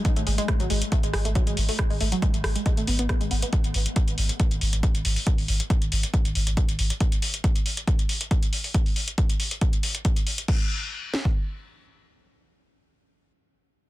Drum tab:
CC |----------------|----------------|----------------|----------------|
HH |xxoxxxoxxxoxxxoo|-ooxxxoxxxoxxxox|xxoxxxoxxxoxxxoo|xooxxxoxxxoxxxox|
SD |----r-----r-----|r-----r-----r---|----------------|----------------|
BD |o---o---o---o---|o---o---o---o---|o---o---o---o---|o---o---o---o---|

CC |----------------|----------------|x---------------|----------------|
HH |xxoxxxoxxxoxxxoo|xooxxxoxxxoxxxox|----------------|----------------|
SD |----------------|----------------|------o---------|----------------|
BD |o---o---o---o---|o---o---o---o---|o------o--------|----------------|